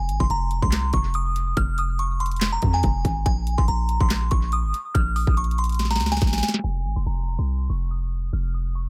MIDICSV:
0, 0, Header, 1, 4, 480
1, 0, Start_track
1, 0, Key_signature, -4, "minor"
1, 0, Tempo, 422535
1, 1782, Time_signature, 4, 2, 24, 8
1, 10100, End_track
2, 0, Start_track
2, 0, Title_t, "Synth bell"
2, 0, Program_c, 0, 98
2, 0, Note_on_c, 0, 80, 108
2, 206, Note_off_c, 0, 80, 0
2, 228, Note_on_c, 0, 84, 85
2, 321, Note_off_c, 0, 84, 0
2, 347, Note_on_c, 0, 82, 90
2, 690, Note_off_c, 0, 82, 0
2, 709, Note_on_c, 0, 84, 81
2, 1040, Note_off_c, 0, 84, 0
2, 1064, Note_on_c, 0, 85, 82
2, 1260, Note_off_c, 0, 85, 0
2, 1306, Note_on_c, 0, 87, 93
2, 1755, Note_off_c, 0, 87, 0
2, 1786, Note_on_c, 0, 89, 107
2, 1981, Note_off_c, 0, 89, 0
2, 2029, Note_on_c, 0, 87, 81
2, 2222, Note_off_c, 0, 87, 0
2, 2263, Note_on_c, 0, 85, 81
2, 2459, Note_off_c, 0, 85, 0
2, 2502, Note_on_c, 0, 84, 80
2, 2847, Note_off_c, 0, 84, 0
2, 2868, Note_on_c, 0, 82, 82
2, 3065, Note_off_c, 0, 82, 0
2, 3111, Note_on_c, 0, 80, 86
2, 3667, Note_off_c, 0, 80, 0
2, 3701, Note_on_c, 0, 80, 108
2, 4046, Note_off_c, 0, 80, 0
2, 4065, Note_on_c, 0, 84, 82
2, 4159, Note_off_c, 0, 84, 0
2, 4182, Note_on_c, 0, 82, 90
2, 4527, Note_off_c, 0, 82, 0
2, 4553, Note_on_c, 0, 84, 77
2, 4883, Note_off_c, 0, 84, 0
2, 4898, Note_on_c, 0, 85, 83
2, 5096, Note_off_c, 0, 85, 0
2, 5143, Note_on_c, 0, 87, 97
2, 5594, Note_off_c, 0, 87, 0
2, 5617, Note_on_c, 0, 89, 99
2, 5816, Note_off_c, 0, 89, 0
2, 5861, Note_on_c, 0, 87, 81
2, 6058, Note_off_c, 0, 87, 0
2, 6104, Note_on_c, 0, 85, 81
2, 6300, Note_off_c, 0, 85, 0
2, 6346, Note_on_c, 0, 84, 77
2, 6690, Note_off_c, 0, 84, 0
2, 6710, Note_on_c, 0, 82, 75
2, 6906, Note_off_c, 0, 82, 0
2, 6949, Note_on_c, 0, 80, 84
2, 7506, Note_off_c, 0, 80, 0
2, 7540, Note_on_c, 0, 80, 100
2, 7886, Note_off_c, 0, 80, 0
2, 7908, Note_on_c, 0, 84, 83
2, 8001, Note_off_c, 0, 84, 0
2, 8027, Note_on_c, 0, 82, 86
2, 8370, Note_off_c, 0, 82, 0
2, 8391, Note_on_c, 0, 84, 78
2, 8722, Note_off_c, 0, 84, 0
2, 8743, Note_on_c, 0, 85, 77
2, 8939, Note_off_c, 0, 85, 0
2, 8985, Note_on_c, 0, 87, 88
2, 9435, Note_off_c, 0, 87, 0
2, 9466, Note_on_c, 0, 89, 102
2, 9661, Note_off_c, 0, 89, 0
2, 9705, Note_on_c, 0, 87, 75
2, 9901, Note_off_c, 0, 87, 0
2, 9944, Note_on_c, 0, 85, 78
2, 10100, Note_off_c, 0, 85, 0
2, 10100, End_track
3, 0, Start_track
3, 0, Title_t, "808-style bass"
3, 0, Program_c, 1, 38
3, 0, Note_on_c, 1, 29, 106
3, 103, Note_on_c, 1, 32, 100
3, 120, Note_off_c, 1, 29, 0
3, 223, Note_off_c, 1, 32, 0
3, 229, Note_on_c, 1, 29, 103
3, 334, Note_off_c, 1, 29, 0
3, 340, Note_on_c, 1, 29, 108
3, 694, Note_off_c, 1, 29, 0
3, 709, Note_on_c, 1, 36, 99
3, 1048, Note_off_c, 1, 36, 0
3, 1062, Note_on_c, 1, 29, 109
3, 1753, Note_off_c, 1, 29, 0
3, 1782, Note_on_c, 1, 29, 115
3, 2936, Note_off_c, 1, 29, 0
3, 2983, Note_on_c, 1, 41, 106
3, 3213, Note_off_c, 1, 41, 0
3, 3222, Note_on_c, 1, 29, 109
3, 3452, Note_off_c, 1, 29, 0
3, 3462, Note_on_c, 1, 32, 105
3, 3692, Note_off_c, 1, 32, 0
3, 3702, Note_on_c, 1, 34, 117
3, 4055, Note_off_c, 1, 34, 0
3, 4069, Note_on_c, 1, 34, 105
3, 4177, Note_off_c, 1, 34, 0
3, 4183, Note_on_c, 1, 34, 113
3, 4535, Note_off_c, 1, 34, 0
3, 4550, Note_on_c, 1, 34, 102
3, 4888, Note_off_c, 1, 34, 0
3, 4902, Note_on_c, 1, 34, 110
3, 5269, Note_on_c, 1, 32, 99
3, 5286, Note_off_c, 1, 34, 0
3, 5376, Note_off_c, 1, 32, 0
3, 5622, Note_on_c, 1, 34, 118
3, 5975, Note_off_c, 1, 34, 0
3, 5989, Note_on_c, 1, 34, 110
3, 6822, Note_on_c, 1, 37, 101
3, 6839, Note_off_c, 1, 34, 0
3, 7050, Note_off_c, 1, 37, 0
3, 7062, Note_on_c, 1, 34, 108
3, 7293, Note_off_c, 1, 34, 0
3, 7541, Note_on_c, 1, 29, 102
3, 7782, Note_on_c, 1, 32, 98
3, 7799, Note_off_c, 1, 29, 0
3, 7903, Note_off_c, 1, 32, 0
3, 7909, Note_on_c, 1, 29, 99
3, 8015, Note_off_c, 1, 29, 0
3, 8022, Note_on_c, 1, 29, 106
3, 8374, Note_off_c, 1, 29, 0
3, 8389, Note_on_c, 1, 36, 97
3, 8728, Note_off_c, 1, 36, 0
3, 8742, Note_on_c, 1, 29, 101
3, 9433, Note_off_c, 1, 29, 0
3, 9460, Note_on_c, 1, 29, 110
3, 10100, Note_off_c, 1, 29, 0
3, 10100, End_track
4, 0, Start_track
4, 0, Title_t, "Drums"
4, 101, Note_on_c, 9, 42, 78
4, 215, Note_off_c, 9, 42, 0
4, 229, Note_on_c, 9, 36, 104
4, 341, Note_on_c, 9, 42, 63
4, 343, Note_off_c, 9, 36, 0
4, 455, Note_off_c, 9, 42, 0
4, 577, Note_on_c, 9, 42, 77
4, 690, Note_off_c, 9, 42, 0
4, 709, Note_on_c, 9, 36, 101
4, 816, Note_on_c, 9, 39, 102
4, 819, Note_on_c, 9, 42, 84
4, 822, Note_on_c, 9, 38, 118
4, 823, Note_off_c, 9, 36, 0
4, 929, Note_off_c, 9, 39, 0
4, 933, Note_off_c, 9, 42, 0
4, 936, Note_off_c, 9, 38, 0
4, 1055, Note_on_c, 9, 42, 78
4, 1062, Note_on_c, 9, 36, 97
4, 1169, Note_off_c, 9, 42, 0
4, 1175, Note_off_c, 9, 36, 0
4, 1295, Note_on_c, 9, 42, 73
4, 1408, Note_off_c, 9, 42, 0
4, 1544, Note_on_c, 9, 42, 80
4, 1658, Note_off_c, 9, 42, 0
4, 1782, Note_on_c, 9, 36, 122
4, 1783, Note_on_c, 9, 42, 90
4, 1895, Note_off_c, 9, 36, 0
4, 1896, Note_off_c, 9, 42, 0
4, 2021, Note_on_c, 9, 42, 75
4, 2134, Note_off_c, 9, 42, 0
4, 2262, Note_on_c, 9, 42, 62
4, 2375, Note_off_c, 9, 42, 0
4, 2502, Note_on_c, 9, 42, 62
4, 2566, Note_off_c, 9, 42, 0
4, 2566, Note_on_c, 9, 42, 65
4, 2630, Note_off_c, 9, 42, 0
4, 2630, Note_on_c, 9, 42, 62
4, 2686, Note_off_c, 9, 42, 0
4, 2686, Note_on_c, 9, 42, 62
4, 2737, Note_on_c, 9, 39, 103
4, 2740, Note_off_c, 9, 42, 0
4, 2740, Note_on_c, 9, 42, 82
4, 2743, Note_on_c, 9, 38, 126
4, 2850, Note_off_c, 9, 39, 0
4, 2853, Note_off_c, 9, 42, 0
4, 2856, Note_off_c, 9, 38, 0
4, 2976, Note_on_c, 9, 42, 79
4, 2982, Note_on_c, 9, 36, 97
4, 3089, Note_off_c, 9, 42, 0
4, 3096, Note_off_c, 9, 36, 0
4, 3216, Note_on_c, 9, 42, 83
4, 3222, Note_on_c, 9, 36, 107
4, 3329, Note_off_c, 9, 42, 0
4, 3335, Note_off_c, 9, 36, 0
4, 3462, Note_on_c, 9, 36, 100
4, 3465, Note_on_c, 9, 42, 79
4, 3576, Note_off_c, 9, 36, 0
4, 3579, Note_off_c, 9, 42, 0
4, 3702, Note_on_c, 9, 36, 120
4, 3703, Note_on_c, 9, 42, 89
4, 3816, Note_off_c, 9, 36, 0
4, 3817, Note_off_c, 9, 42, 0
4, 3941, Note_on_c, 9, 42, 78
4, 4054, Note_off_c, 9, 42, 0
4, 4069, Note_on_c, 9, 36, 104
4, 4181, Note_on_c, 9, 42, 63
4, 4183, Note_off_c, 9, 36, 0
4, 4295, Note_off_c, 9, 42, 0
4, 4418, Note_on_c, 9, 42, 77
4, 4531, Note_off_c, 9, 42, 0
4, 4550, Note_on_c, 9, 36, 101
4, 4657, Note_on_c, 9, 39, 98
4, 4660, Note_on_c, 9, 42, 86
4, 4663, Note_off_c, 9, 36, 0
4, 4663, Note_on_c, 9, 38, 126
4, 4770, Note_off_c, 9, 39, 0
4, 4773, Note_off_c, 9, 42, 0
4, 4776, Note_off_c, 9, 38, 0
4, 4895, Note_on_c, 9, 42, 76
4, 4902, Note_on_c, 9, 36, 99
4, 5009, Note_off_c, 9, 42, 0
4, 5015, Note_off_c, 9, 36, 0
4, 5136, Note_on_c, 9, 42, 75
4, 5249, Note_off_c, 9, 42, 0
4, 5386, Note_on_c, 9, 42, 84
4, 5499, Note_off_c, 9, 42, 0
4, 5622, Note_on_c, 9, 36, 119
4, 5624, Note_on_c, 9, 42, 94
4, 5736, Note_off_c, 9, 36, 0
4, 5737, Note_off_c, 9, 42, 0
4, 5862, Note_on_c, 9, 46, 76
4, 5975, Note_off_c, 9, 46, 0
4, 5989, Note_on_c, 9, 36, 103
4, 6102, Note_on_c, 9, 42, 52
4, 6103, Note_off_c, 9, 36, 0
4, 6182, Note_off_c, 9, 42, 0
4, 6182, Note_on_c, 9, 42, 52
4, 6262, Note_off_c, 9, 42, 0
4, 6262, Note_on_c, 9, 42, 57
4, 6342, Note_off_c, 9, 42, 0
4, 6342, Note_on_c, 9, 42, 62
4, 6406, Note_off_c, 9, 42, 0
4, 6406, Note_on_c, 9, 42, 64
4, 6422, Note_off_c, 9, 42, 0
4, 6422, Note_on_c, 9, 42, 54
4, 6469, Note_off_c, 9, 42, 0
4, 6469, Note_on_c, 9, 42, 61
4, 6503, Note_off_c, 9, 42, 0
4, 6503, Note_on_c, 9, 42, 54
4, 6526, Note_off_c, 9, 42, 0
4, 6526, Note_on_c, 9, 42, 62
4, 6580, Note_off_c, 9, 42, 0
4, 6580, Note_on_c, 9, 42, 85
4, 6583, Note_on_c, 9, 38, 65
4, 6646, Note_off_c, 9, 38, 0
4, 6646, Note_on_c, 9, 38, 57
4, 6694, Note_off_c, 9, 42, 0
4, 6709, Note_off_c, 9, 38, 0
4, 6709, Note_on_c, 9, 38, 68
4, 6765, Note_off_c, 9, 38, 0
4, 6765, Note_on_c, 9, 38, 63
4, 6815, Note_on_c, 9, 42, 76
4, 6822, Note_off_c, 9, 38, 0
4, 6822, Note_on_c, 9, 38, 80
4, 6886, Note_off_c, 9, 38, 0
4, 6886, Note_on_c, 9, 38, 70
4, 6929, Note_off_c, 9, 42, 0
4, 6950, Note_off_c, 9, 38, 0
4, 6950, Note_on_c, 9, 38, 84
4, 7006, Note_off_c, 9, 38, 0
4, 7006, Note_on_c, 9, 38, 73
4, 7055, Note_on_c, 9, 42, 82
4, 7062, Note_off_c, 9, 38, 0
4, 7062, Note_on_c, 9, 36, 105
4, 7062, Note_on_c, 9, 38, 93
4, 7126, Note_off_c, 9, 38, 0
4, 7126, Note_on_c, 9, 38, 85
4, 7169, Note_off_c, 9, 42, 0
4, 7176, Note_off_c, 9, 36, 0
4, 7190, Note_off_c, 9, 38, 0
4, 7190, Note_on_c, 9, 38, 97
4, 7247, Note_off_c, 9, 38, 0
4, 7247, Note_on_c, 9, 38, 90
4, 7303, Note_off_c, 9, 38, 0
4, 7303, Note_on_c, 9, 38, 110
4, 7303, Note_on_c, 9, 42, 70
4, 7366, Note_off_c, 9, 38, 0
4, 7366, Note_on_c, 9, 38, 98
4, 7416, Note_off_c, 9, 42, 0
4, 7430, Note_off_c, 9, 38, 0
4, 7430, Note_on_c, 9, 38, 116
4, 7430, Note_on_c, 9, 42, 69
4, 7486, Note_off_c, 9, 38, 0
4, 7486, Note_on_c, 9, 38, 99
4, 7544, Note_off_c, 9, 42, 0
4, 7600, Note_off_c, 9, 38, 0
4, 8021, Note_on_c, 9, 42, 58
4, 8135, Note_off_c, 9, 42, 0
4, 8258, Note_on_c, 9, 42, 77
4, 8371, Note_off_c, 9, 42, 0
4, 8500, Note_on_c, 9, 42, 79
4, 8613, Note_off_c, 9, 42, 0
4, 8735, Note_on_c, 9, 42, 74
4, 8848, Note_off_c, 9, 42, 0
4, 8976, Note_on_c, 9, 42, 73
4, 9089, Note_off_c, 9, 42, 0
4, 9225, Note_on_c, 9, 42, 75
4, 9339, Note_off_c, 9, 42, 0
4, 9464, Note_on_c, 9, 42, 86
4, 9577, Note_off_c, 9, 42, 0
4, 9701, Note_on_c, 9, 42, 69
4, 9814, Note_off_c, 9, 42, 0
4, 9942, Note_on_c, 9, 42, 58
4, 10055, Note_off_c, 9, 42, 0
4, 10100, End_track
0, 0, End_of_file